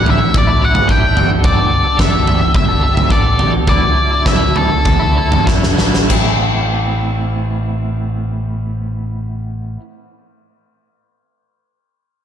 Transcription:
0.00 0.23 A1 medium
0.00 0.33 A2 medium
0.06 0.20 F#3 medium
0.06 0.21 A3 medium
0.06 0.20 D4 medium
0.06 0.20 E4 medium
0.06 0.36 E5 medium
0.06 floor tom medium
0.21 muted clean electric guitar stroke soft
0.34 0.77 A1 medium
0.34 0.64 D5 medium
0.34 kick loud
0.34 floor tom medium
0.47 0.62 A3 medium
0.47 0.62 D4 medium
0.47 0.62 E4 medium
0.61 0.74 F#3 medium
0.61 0.75 A3 medium
0.61 0.74 D4 medium
0.61 0.74 E4 medium
0.61 0.88 F#5 medium
0.75 muted clean electric guitar stroke soft
0.75 floor tom medium
0.75 mid tom medium
0.88 1.10 A1 medium
0.88 1.14 A2 medium
0.88 1.14 F#3 medium
0.88 1.16 A3 medium
0.88 1.17 D4 medium
0.88 1.15 E4 medium
0.88 1.28 G5 medium
0.88 kick medium
1.15 1.81 G1 medium
1.15 1.42 G3 medium
1.15 1.43 B3 medium
1.15 1.45 D4 medium
1.15 1.46 A4 medium
1.15 floor tom medium
1.44 1.96 G3 medium
1.44 1.86 B3 medium
1.44 1.85 D4 medium
1.44 1.84 A4 medium
1.44 2.01 D5 medium
1.44 kick medium
1.44 floor tom medium
1.84 1.98 B3 soft
1.84 2.00 D4 medium
1.84 2.00 A4 medium
1.97 2.42 G1 medium
1.97 2.25 G3 medium
1.97 2.26 B3 medium
1.97 2.28 D4 medium
1.97 2.28 A4 medium
1.97 2.51 E5 medium
1.97 kick medium
1.97 snare medium
1.97 floor tom medium
2.26 2.68 G3 medium
2.26 2.41 B3 medium
2.26 2.41 D4 medium
2.26 2.41 A4 medium
2.26 floor tom medium
2.41 muted clean electric guitar stroke soft
2.54 2.98 G1 medium
2.54 3.11 E5 medium
2.54 kick medium
2.54 floor tom medium
2.68 2.81 B3 soft
2.68 2.83 D4 medium
2.68 2.84 A4 medium
2.81 3.09 G3 medium
2.81 2.97 B3 medium
2.81 2.96 D4 medium
2.81 2.97 A4 medium
2.97 muted clean electric guitar stroke soft
2.97 floor tom medium
2.97 mid tom medium
3.10 3.55 A1 medium
3.10 3.38 G3 medium
3.10 3.38 B3 medium
3.10 3.39 D4 medium
3.10 3.41 A4 medium
3.10 3.50 D5 medium
3.10 kick medium
3.39 3.65 G3 medium
3.39 3.65 B3 medium
3.39 3.66 D4 medium
3.39 3.70 A4 medium
3.39 floor tom medium
3.67 3.90 D2 medium
3.67 4.24 D3 medium
3.67 4.25 F#3 medium
3.67 4.12 A3 medium
3.67 4.12 D4 medium
3.67 4.09 E4 medium
3.67 4.22 D5 medium
3.67 kick medium
3.67 floor tom medium
4.11 4.26 A3 soft
4.11 4.26 D4 soft
4.11 4.27 E4 medium
4.25 4.73 D2 medium
4.25 4.85 D3 medium
4.25 4.54 F#3 medium
4.25 4.55 A3 medium
4.25 4.56 D4 medium
4.25 4.57 E4 medium
4.25 4.54 E5 medium
4.25 kick medium
4.25 snare medium
4.25 floor tom medium
4.55 4.70 F#3 medium
4.55 4.71 A3 medium
4.55 4.70 D4 medium
4.55 4.70 E4 medium
4.55 5.44 A4 medium
4.55 floor tom medium
4.71 muted clean electric guitar stroke soft
4.85 5.34 D2 medium
4.85 kick loud
4.85 floor tom medium
5.00 5.15 A3 soft
5.00 5.16 D4 medium
5.00 5.17 E4 medium
5.15 5.30 F#3 medium
5.15 5.30 A3 medium
5.15 5.29 D4 medium
5.15 5.29 E4 medium
5.31 muted clean electric guitar stroke soft
5.31 floor tom medium
5.31 mid tom medium
5.46 5.75 F#1 medium
5.46 6.08 D3 medium
5.46 5.75 F#3 medium
5.46 5.76 A3 medium
5.46 5.77 D4 medium
5.46 5.78 E4 medium
5.46 kick medium
5.46 snare soft
5.63 snare soft
5.76 6.07 A1 medium
5.76 6.07 F#3 medium
5.76 6.08 A3 medium
5.76 6.08 D4 medium
5.76 6.09 E4 medium
5.76 snare medium
5.94 snare medium
6.08 9.76 A1 medium
6.08 9.79 A2 medium
6.08 9.79 E3 medium
6.08 9.81 B3 medium
6.08 9.81 C4 medium
6.08 9.82 E4 medium
6.08 kick medium
6.08 crash medium

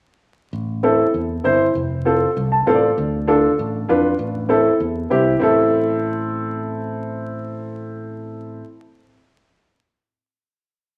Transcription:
0.53 1.02 A1 medium
0.83 1.05 C4 medium
0.83 1.05 E4 medium
0.83 1.05 A4 medium
1.14 1.39 E2 medium
1.44 1.69 G1 medium
1.44 1.66 C4 medium
1.44 1.66 E4 medium
1.44 1.66 C5 medium
1.75 2.24 F1 loud
2.05 2.27 C4 medium
2.05 2.27 F4 medium
2.05 2.28 A4 medium
2.37 2.61 C2 medium
2.52 2.66 A5 medium
2.67 2.91 A1 medium
2.67 2.88 C4 medium
2.67 2.88 F4 medium
2.67 2.89 A4 medium
2.67 2.74 F5 medium
2.74 2.96 D5 medium
2.98 3.46 D2 medium
3.27 3.49 D4 medium
3.27 3.49 F4 medium
3.27 3.49 A4 medium
3.59 3.83 A1 medium
3.89 4.14 F2 medium
3.89 4.10 D4 medium
3.89 4.10 F4 medium
3.89 4.11 B4 medium
4.19 4.68 A1 medium
4.49 4.71 C4 medium
4.49 4.71 E4 medium
4.49 4.71 A4 medium
4.80 5.05 E2 medium
5.10 5.36 C2 medium
5.10 5.32 C4 medium
5.10 5.32 E4 medium
5.10 5.32 G4 medium
5.39 8.61 A1 medium
5.39 8.59 C4 medium
5.39 8.60 E4 medium
5.39 8.62 A4 medium

